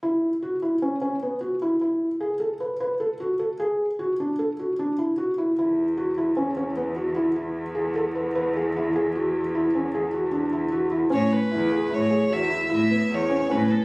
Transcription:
<<
  \new Staff \with { instrumentName = "Violin" } { \time 7/4 \key a \major \tempo 4 = 152 r1. r4 | r1. r4 | r1. r4 | r1. r4 |
cis''8 b'4. cis''4 e''4 e''4 cis''4 b'8 a'8 | }
  \new Staff \with { instrumentName = "Felt piano" } { \time 7/4 \key a \major e'4 fis'8 e'8 cis'8 cis'8 b8 fis'8 e'8 e'4 gis'8 a'8 b'8 | b'8 a'8 fis'8 a'8 gis'4 fis'8 d'8 a'8 fis'8 d'8 e'8 fis'8 e'8 | e'4 fis'8 e'8 cis'8 cis'8 b8 fis'8 e'8 e'4 gis'8 a'8 b'8 | b'8 gis'8 e'8 gis'8 fis'4 e'8 cis'8 gis'8 fis'8 d'8 e'8 fis'8 e'8 |
cis'4 e'8 gis'8 e'8 gis'8 fis'8 e'8 e'8 b4 cis'8 cis'8 b8 | }
  \new Staff \with { instrumentName = "Cello" } { \clef bass \time 7/4 \key a \major r1. r4 | r1. r4 | e,1.~ e,4~ | e,1.~ e,4 |
a,8 r8 e,4 a,4 e,4 a,4 e,4 a,4 | }
>>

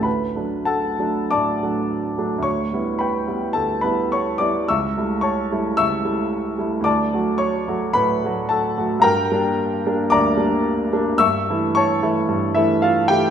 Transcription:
<<
  \new Staff \with { instrumentName = "Grand piano" } { \time 4/4 \key d \major \tempo 4 = 109 <b' b''>4 <a' fis'' a''>4 <d'' a'' d'''>2 | <cis'' cis'''>4 <b' g'' b''>4 <a' a''>8 <b' b''>8 <cis'' cis'''>8 <d'' d'''>8 | <e'' cis''' e'''>4 <cis'' a'' cis'''>4 <e'' cis''' e'''>2 | <d'' a'' d'''>4 <cis'' cis'''>4 <b' b''>4 <a' fis'' a''>8 r8 |
\key g \dorian <bes' g'' bes''>2 <d'' bes'' d'''>2 | <e'' cis''' e'''>4 <cis'' a'' cis'''>4. <e' e''>8 <f' f''>8 <g' g''>8 | }
  \new Staff \with { instrumentName = "Grand piano" } { \time 4/4 \key d \major d,8 <fis a d'>4 <fis a d'>8 a,8 <fis a d'>4 <fis a d'>8 | d,8 <g b e'>4 <g b e'>8 d,8 <g b e'>4 <g b e'>8 | cis,8 <g a e'>4 <g a e'>8 cis,8 <g a e'>4 <g a e'>8 | d,8 <fis a fis'>4 <fis a fis'>8 a,8 <fis a fis'>4 <fis a fis'>8 |
\key g \dorian g,8 <g bes d'>4 <g bes d'>8 d,8 <g bes d'>4 <g bes d'>8 | g,8 <e a e'>4 <e a e'>8 g,8 <e a>4 <e a e'>8 | }
>>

